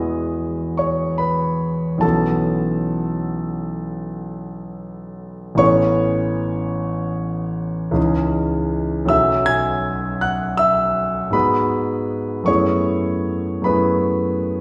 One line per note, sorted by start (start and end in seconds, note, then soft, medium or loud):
0.00 2.05 E2 soft
0.00 2.05 G#3 soft
0.00 2.00 B3 soft
0.00 2.05 E4 soft
0.00 2.02 F#4 soft
0.00 2.05 G#4 soft
0.00 1.19 B4 soft
0.00 0.75 D#5 medium
0.00 2.05 G#5 medium
0.00 1.18 B5 medium
0.00 0.79 D#6 medium
0.77 1.17 C#5 medium
0.77 1.19 C#6 medium
1.18 1.98 B4 soft
1.18 2.02 B5 medium
1.98 5.54 B1 soft
1.98 5.54 E3 soft
1.98 5.55 B3 soft
1.98 5.55 C#4 soft
1.98 5.56 A4 medium
1.98 5.59 A5 medium
2.02 5.56 F#4 soft
5.55 7.90 A1 soft
5.55 7.91 E3 soft
5.55 7.91 B3 soft
5.55 7.91 C#4 soft
5.55 7.92 A4 soft
5.55 9.06 C#5 medium
5.55 9.09 C#6 medium
7.91 9.04 C#2 medium
7.91 9.05 E3 soft
7.91 9.05 C#4 soft
7.91 9.06 D#4 soft
7.91 9.06 G#4 soft
9.05 11.27 B1 soft
9.05 11.28 F#3 soft
9.05 11.28 C#4 soft
9.05 11.29 F#4 soft
9.05 11.29 A4 soft
9.05 9.47 E6 medium
9.10 9.45 E5 medium
9.46 10.18 G#5 medium
9.46 10.22 G#6 medium
10.21 10.57 F#5 medium
10.21 10.59 F#6 medium
10.57 11.30 E5 medium
10.57 11.33 E6 medium
11.30 12.43 G#2 soft
11.30 12.43 G#3 soft
11.30 12.44 B3 soft
11.30 12.44 F#4 soft
11.30 12.44 G#4 soft
11.30 12.44 B4 medium
11.30 12.47 B5 medium
12.44 13.60 F#2 soft
12.44 13.61 A3 soft
12.44 13.61 B3 soft
12.44 13.61 E4 soft
12.44 13.62 C#5 medium
12.44 13.65 C#6 medium
12.48 13.62 G#4 soft
13.62 14.61 F#2 soft
13.62 14.61 A3 soft
13.62 14.61 B3 soft
13.62 14.61 E4 soft
13.62 14.61 G#4 soft
13.62 14.61 B4 medium
13.62 14.61 B5 medium